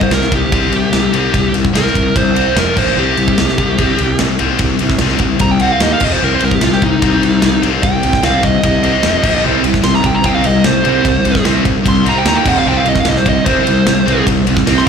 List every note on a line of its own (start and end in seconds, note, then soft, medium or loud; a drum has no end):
0.00 0.10 G3 medium
0.00 0.12 C5 medium
0.00 kick medium
0.11 0.24 C2 medium
0.11 0.31 C3 medium
0.11 0.31 G3 medium
0.11 0.33 A#4 medium
0.11 snare loud
0.11 ride medium
0.22 snare soft
0.31 0.44 C2 medium
0.31 0.51 C3 medium
0.31 0.51 G3 medium
0.31 1.53 G4 loud
0.31 kick medium
0.31 ride medium
0.52 0.66 C2 medium
0.52 0.72 C3 medium
0.52 0.73 G3 medium
0.52 0.73 C4 loud
0.52 kick loud
0.52 ride medium
0.72 0.85 C2 medium
0.72 0.92 C3 medium
0.72 0.92 G3 medium
0.72 ride medium
0.93 1.06 C2 medium
0.93 1.12 C3 medium
0.93 1.13 G3 medium
0.93 snare loud
0.93 ride medium
1.13 1.27 C2 medium
1.13 1.33 C3 medium
1.13 1.33 G3 medium
1.13 1.34 C4 medium
1.13 ride medium
1.34 1.47 C2 medium
1.34 1.53 C3 medium
1.34 1.53 G3 medium
1.34 kick loud
1.34 ride medium
1.54 1.67 C2 medium
1.54 1.72 C3 medium
1.54 1.73 G3 medium
1.54 ride medium
1.65 kick medium
1.73 1.87 C2 medium
1.73 1.93 C3 medium
1.73 1.93 G3 medium
1.73 1.94 C4 medium
1.73 2.15 A#4 medium
1.73 snare loud
1.73 ride loud
1.86 snare soft
1.94 2.08 C2 medium
1.94 2.13 C3 medium
1.94 2.13 G3 medium
1.94 kick medium
1.94 ride medium
2.15 2.41 C2 medium
2.15 2.33 C3 medium
2.15 2.34 G3 medium
2.15 2.56 C5 medium
2.15 kick loud
2.15 ride medium
2.34 2.54 C3 medium
2.34 2.55 G3 medium
2.34 2.55 C4 medium
2.34 ride medium
2.55 2.69 F1 medium
2.55 2.75 F2 medium
2.55 2.75 C3 medium
2.55 2.75 F3 medium
2.55 snare loud
2.55 ride loud
2.59 2.78 A#4 medium
2.76 2.89 A#1 medium
2.76 2.96 A#2 medium
2.76 2.96 F3 medium
2.76 2.96 A#3 medium
2.76 2.98 C5 medium
2.76 kick loud
2.76 crash medium
2.97 3.10 C2 medium
2.97 3.16 C3 medium
2.97 3.17 G3 medium
2.97 3.17 C4 medium
2.97 5.80 C4 medium
2.97 5.80 G4 medium
2.97 4.17 G4 medium
2.97 5.79 C5 medium
3.17 3.30 C2 medium
3.17 3.36 C3 medium
3.17 3.37 G3 medium
3.17 ride medium
3.28 kick medium
3.38 3.50 C2 medium
3.38 3.57 C3 medium
3.38 3.57 G3 medium
3.38 snare loud
3.38 ride medium
3.48 snare soft
3.58 3.71 C2 medium
3.58 3.78 C3 medium
3.58 3.78 G3 medium
3.58 kick medium
3.58 ride medium
3.78 3.91 C2 medium
3.78 3.98 C3 medium
3.78 3.99 G3 medium
3.78 3.99 C4 medium
3.78 kick loud
3.78 ride medium
3.98 4.13 C2 medium
3.98 4.18 C3 medium
3.98 4.18 G3 medium
3.98 ride medium
4.19 4.33 C2 medium
4.19 4.38 C3 medium
4.19 4.38 G3 medium
4.19 snare loud
4.19 ride medium
4.39 4.53 C2 medium
4.39 4.58 C3 medium
4.39 4.59 G3 loud
4.39 4.59 C4 loud
4.39 ride medium
4.59 4.72 C2 medium
4.59 4.78 C3 medium
4.59 4.78 G3 medium
4.59 kick loud
4.59 ride medium
4.79 4.94 C2 medium
4.79 4.99 C3 medium
4.79 4.99 G3 medium
4.79 ride medium
4.89 kick medium
4.89 snare soft
4.99 5.14 C2 medium
4.99 5.20 C3 medium
4.99 5.20 G3 medium
4.99 5.21 C4 medium
4.99 snare loud
4.99 ride loud
5.08 snare soft
5.19 5.33 C2 medium
5.19 5.40 C3 medium
5.19 kick medium
5.19 ride medium
5.23 5.40 G3 medium
5.39 5.65 C2 medium
5.39 5.60 C3 medium
5.39 5.60 G3 medium
5.39 5.51 A#5 medium
5.39 kick loud
5.39 ride loud
5.51 5.61 G5 medium
5.60 5.81 C3 medium
5.60 5.81 G3 medium
5.60 5.81 C4 loud
5.60 5.72 F#5 medium
5.60 ride medium
5.72 5.82 F5 medium
5.80 5.94 D#2 medium
5.80 6.00 D#3 medium
5.80 6.01 A#3 medium
5.80 6.01 D#4 medium
5.80 6.02 D#4 medium
5.80 6.02 A#4 medium
5.80 5.92 D#5 loud
5.80 6.02 F5 medium
5.80 snare loud
5.80 ride loud
5.92 6.04 F5 medium
6.00 6.14 F1 medium
6.00 6.21 F2 medium
6.00 6.19 C3 medium
6.00 6.22 F3 medium
6.00 6.21 F3 loud
6.00 6.21 C4 medium
6.00 9.21 G4 medium
6.00 kick loud
6.00 crash loud
6.04 6.13 D#5 medium
6.13 6.24 C5 medium
6.20 6.35 C2 medium
6.20 6.40 C3 medium
6.20 6.41 G3 loud
6.20 9.21 C4 medium
6.20 6.41 C4 loud
6.20 6.35 A#4 medium
6.20 9.02 C5 medium
6.35 6.43 C5 medium
6.40 6.55 C2 medium
6.40 6.61 C3 medium
6.40 6.61 G3 medium
6.40 ride medium
6.45 6.55 A#4 medium
6.51 6.63 G4 medium
6.51 kick medium
6.61 6.75 C2 medium
6.61 6.80 C3 medium
6.61 6.81 G3 medium
6.61 6.73 F4 medium
6.61 snare loud
6.61 ride loud
6.72 6.83 G4 medium
6.72 snare soft
6.82 6.95 C2 medium
6.82 7.01 C3 medium
6.82 7.01 G3 medium
6.82 7.62 D#4 loud
6.82 kick medium
6.82 ride medium
7.02 7.15 C2 medium
7.02 7.21 C3 medium
7.02 7.22 G3 loud
7.02 7.22 C4 medium
7.02 kick loud
7.02 ride medium
7.23 7.36 C2 medium
7.23 7.41 C3 medium
7.23 7.41 G3 medium
7.23 ride medium
7.42 7.56 C2 medium
7.42 7.61 C3 medium
7.42 7.61 G3 medium
7.42 snare loud
7.42 ride loud
7.62 7.76 C2 medium
7.62 7.81 C3 medium
7.62 7.82 G3 loud
7.62 7.82 C4 loud
7.62 ride medium
7.82 7.96 C2 medium
7.82 8.01 C3 medium
7.82 8.01 G3 medium
7.82 8.22 G5 loud
7.82 kick loud
7.82 ride medium
8.03 8.17 C2 medium
8.03 8.21 C3 medium
8.03 8.21 G3 medium
8.03 ride medium
8.13 kick medium
8.13 snare soft
8.23 8.36 C2 medium
8.23 8.41 C3 medium
8.23 8.42 G3 medium
8.23 8.43 C4 medium
8.23 8.44 F5 medium
8.23 snare loud
8.23 ride medium
8.43 8.56 C2 medium
8.43 8.61 C3 medium
8.43 8.62 G3 medium
8.43 8.63 D#5 loud
8.43 kick medium
8.43 ride medium
8.64 8.89 C2 medium
8.64 8.82 C3 medium
8.64 8.83 G3 medium
8.64 9.43 D#5 medium
8.64 kick loud
8.64 ride medium
8.83 9.03 C3 medium
8.83 9.03 G3 medium
8.83 9.03 C4 loud
8.83 ride medium
9.03 9.17 F1 medium
9.03 9.23 F2 medium
9.03 9.23 C3 medium
9.03 9.24 F3 medium
9.03 9.22 F3 medium
9.03 snare loud
9.03 ride loud
9.23 9.36 A#1 medium
9.23 9.43 A#2 medium
9.23 9.43 F3 loud
9.23 9.44 A#3 medium
9.23 9.43 A#3 loud
9.23 9.44 F4 medium
9.23 12.22 C5 medium
9.23 kick loud
9.23 crash loud
9.43 9.57 C2 medium
9.43 9.62 C3 medium
9.43 9.63 G3 loud
9.43 9.63 C4 medium
9.43 12.23 C4 medium
9.43 12.23 G4 medium
9.63 9.77 C2 medium
9.63 9.81 C3 medium
9.63 9.82 G3 medium
9.63 ride medium
9.74 kick medium
9.74 snare soft
9.82 9.98 C2 medium
9.82 10.01 C3 medium
9.82 10.02 G3 medium
9.82 9.94 C6 loud
9.82 snare loud
9.82 ride loud
9.94 10.05 A#5 medium
9.94 snare soft
10.03 10.17 C2 medium
10.03 10.22 C3 medium
10.03 10.22 G3 medium
10.03 10.15 G5 medium
10.03 kick medium
10.03 ride medium
10.15 10.24 A#5 medium
10.23 10.37 C2 medium
10.23 10.42 C3 medium
10.23 10.43 G3 medium
10.23 10.44 C4 loud
10.23 10.34 G5 medium
10.23 kick loud
10.23 ride medium
10.34 10.44 F5 medium
10.43 10.57 C2 medium
10.43 10.62 C3 medium
10.43 10.62 G3 medium
10.43 10.65 D#5 medium
10.43 ride medium
10.64 10.78 C2 medium
10.64 10.83 C3 medium
10.64 10.83 G3 medium
10.64 11.43 C5 loud
10.64 snare loud
10.64 ride medium
10.84 10.98 C2 medium
10.84 11.03 C3 medium
10.84 11.04 G3 loud
10.84 11.04 C4 loud
10.84 ride medium
11.04 11.17 C2 medium
11.04 11.23 C3 medium
11.04 11.23 G3 medium
11.04 kick loud
11.04 ride medium
11.25 11.38 C2 medium
11.25 11.43 C3 medium
11.25 11.43 G3 medium
11.25 ride medium
11.35 kick medium
11.35 snare soft
11.44 11.58 C2 medium
11.44 11.63 C3 medium
11.44 11.63 G3 medium
11.44 11.64 C4 loud
11.44 snare loud
11.44 ride medium
11.64 11.78 C2 medium
11.64 11.82 C3 medium
11.64 11.83 G3 medium
11.64 kick medium
11.64 ride medium
11.83 12.10 C2 medium
11.83 12.03 C3 medium
11.83 12.03 G3 medium
11.83 kick loud
11.83 ride loud
11.88 12.06 C6 medium
12.04 12.24 C3 medium
12.04 12.24 G3 medium
12.04 12.24 C4 loud
12.04 ride medium
12.09 12.17 A#5 medium
12.18 12.27 G5 medium
12.24 12.38 D#2 medium
12.24 12.44 D#3 medium
12.24 12.45 A#3 medium
12.24 12.45 D#4 medium
12.24 12.46 D#4 medium
12.24 12.46 A#4 medium
12.24 12.46 F5 medium
12.24 12.36 A#5 medium
12.24 snare loud
12.24 ride loud
12.36 12.45 G5 medium
12.45 12.58 F1 medium
12.45 12.64 F2 loud
12.45 12.64 C3 loud
12.45 12.66 F3 medium
12.45 12.65 F3 loud
12.45 14.89 C4 medium
12.45 14.89 G4 medium
12.45 12.57 F#5 medium
12.45 kick loud
12.45 crash medium
12.59 12.67 F5 medium
12.65 12.79 C2 medium
12.65 12.83 C3 medium
12.65 12.83 G3 medium
12.65 12.85 C4 loud
12.65 14.89 C5 medium
12.65 12.77 G5 loud
12.77 12.86 F5 loud
12.84 12.98 C2 medium
12.84 13.03 C3 medium
12.84 13.03 G3 medium
12.84 ride medium
12.88 12.97 D#5 medium
12.95 kick medium
12.95 snare soft
13.00 13.08 F5 medium
13.05 13.18 C2 medium
13.05 13.23 C3 medium
13.05 13.23 G3 medium
13.05 13.17 D#5 medium
13.05 snare loud
13.05 ride loud
13.16 13.27 C5 medium
13.16 snare soft
13.25 13.38 C2 medium
13.25 13.44 C3 medium
13.25 13.44 G3 medium
13.25 13.45 D#5 loud
13.25 kick medium
13.25 ride medium
13.45 13.59 C2 medium
13.45 13.65 C3 medium
13.45 13.65 G3 medium
13.45 13.65 C4 loud
13.45 14.24 C5 medium
13.45 kick loud
13.45 ride loud
13.67 13.79 C2 medium
13.67 13.84 C3 medium
13.67 13.85 G3 medium
13.67 ride medium
13.87 14.00 C2 medium
13.87 14.05 C3 medium
13.87 14.05 G3 medium
13.87 snare loud
13.87 ride loud
14.06 14.20 C2 medium
14.06 14.25 C3 medium
14.06 14.25 G3 medium
14.06 14.26 C4 loud
14.06 ride medium
14.26 14.40 C2 medium
14.26 14.44 C3 medium
14.26 14.45 G3 medium
14.26 kick loud
14.26 ride loud
14.47 14.60 C2 medium
14.47 14.65 C3 medium
14.47 14.65 G3 medium
14.47 ride medium
14.57 kick medium
14.57 snare soft
14.66 14.80 C2 medium
14.66 14.85 C3 medium
14.66 14.86 G3 medium
14.66 14.86 C4 medium
14.66 snare loud
14.66 ride medium
14.77 14.87 C6 medium
14.77 snare soft